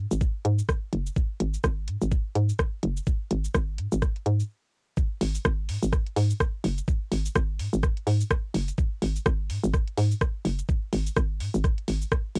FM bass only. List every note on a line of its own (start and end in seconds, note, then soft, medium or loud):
0.11 0.25 G#1 loud
0.45 0.62 G#2 loud
0.93 1.10 F#1 loud
1.40 1.57 G#1 loud
1.64 1.89 G#1 loud
1.88 1.97 G#2 medium
2.02 2.16 G#1 loud
2.35 2.52 G#2 medium
2.83 3.00 F#1 loud
3.31 3.48 G#1 loud
3.55 3.80 G#1 loud
3.78 3.87 G#2 medium
3.92 4.06 G#1 loud
4.26 4.43 G#2 loud
5.21 5.38 G#1 loud
5.45 5.70 G#1 loud
5.69 5.78 G#2 medium
5.83 5.97 G#1 loud
6.16 6.33 G#2 loud
6.64 6.81 F#1 loud
7.12 7.29 G#1 loud
7.35 7.61 G#1 loud
7.59 7.68 G#2 medium
7.73 7.87 G#1 loud
8.07 8.24 G#2 loud
8.54 8.71 F#1 loud
9.02 9.19 G#1 loud
9.26 9.51 G#1 loud
9.50 9.59 G#2 medium
9.64 9.78 G#1 loud
9.97 10.14 G#2 loud
10.45 10.62 F#1 loud
10.93 11.10 G#1 loud
11.16 11.42 G#1 loud
11.40 11.49 G#2 medium
11.54 11.68 G#1 loud
11.88 12.05 G#1 medium
12.36 12.39 G#1 medium